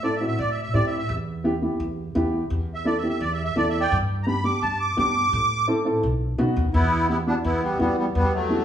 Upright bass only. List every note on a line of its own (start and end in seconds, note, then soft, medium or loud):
0.00 0.25 A2 loud
0.38 0.67 A2 medium
0.74 1.02 A2 medium
1.09 1.66 E2 medium
1.80 2.08 E2 medium
2.15 2.43 E2 medium
2.50 3.07 E2 medium
3.21 3.49 E2 medium
3.56 3.85 E2 medium
3.92 4.48 G2 loud
4.62 4.90 G2 medium
4.97 5.26 G2 loud
5.33 5.89 A2 loud
6.03 6.38 B1 medium
6.38 6.54 B1 medium
6.56 6.72 D#2 medium
6.74 7.30 E2 loud
7.44 7.73 E2 medium
7.80 8.08 E2 medium
8.15 8.65 E2 medium